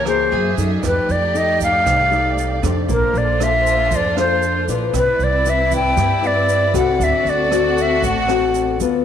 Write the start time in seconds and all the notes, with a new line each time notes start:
Already playing: C#2 E3 A#3 G4 A#4 C#5 A5
0.05 A#3 E4 G#4 C5, cross-stick, closed hi-hat, shaker
0.31 F#2 F#4 G#4 E5, closed hi-hat
0.57 F#2 D#4 A4 D5, closed hi-hat, shaker
0.81 F2 F3 A3 D#4 G4 D5, kick, cross-stick, closed hi-hat, shaker
0.86 B4
1.09 F2 D5, closed hi-hat, shaker
1.34 D#4 A4 D5 D#5, closed hi-hat, shaker
1.60 F5, kick, closed hi-hat, shaker
1.86 C2 C3, kick, cross-stick, closed hi-hat, shaker
2.11 D#4 A4 D5, closed hi-hat, shaker
2.38 closed hi-hat, shaker
2.63 F2 D4 A4 C5, kick, cross-stick, closed hi-hat, shaker
2.88 A#1 A#3 D4 F4 A4 C5, kick, closed hi-hat, shaker
2.92 A#4
3.14 A#1, closed hi-hat, shaker
3.18 D5
3.40 D4 A4 C5 E5, cross-stick, closed hi-hat, shaker
3.66 closed hi-hat, shaker
3.91 F2 F3, kick, closed hi-hat, shaker
3.96 D5
4.17 D4 A4 C5, cross-stick, closed hi-hat, shaker
4.42 closed hi-hat, shaker
4.68 A#1 E4 B4 D5, closed hi-hat, shaker
4.93 C2 C4 E4 B4 D5, kick, cross-stick, closed hi-hat, shaker
4.97 B4
5.19 C2, closed hi-hat, shaker
5.24 D5
5.45 E4 B4 D5, closed hi-hat, shaker
5.50 E5
5.71 kick, closed hi-hat, shaker
5.76 G5
5.96 G2 G3, kick, cross-stick, closed hi-hat, shaker
6.22 E4 B4 D5, closed hi-hat, shaker
6.27 D5
6.49 closed hi-hat, shaker
6.73 C2 C4 F#4 A4 F#5, kick, cross-stick, closed hi-hat, shaker
6.99 D2 D3 F#4 A4, kick, closed hi-hat, shaker
7.04 E5
7.25 D2, closed hi-hat, shaker
7.29 D5
7.51 C4 F#4 A4, cross-stick, closed hi-hat, shaker
7.76 closed hi-hat, shaker
7.82 E5
8.02 A1 A3, kick, closed hi-hat, shaker
8.07 F#5
8.28 C4 F#4 A4, cross-stick, closed hi-hat, shaker
8.54 closed hi-hat, shaker
8.80 D2 B3 F4 A4, closed hi-hat, shaker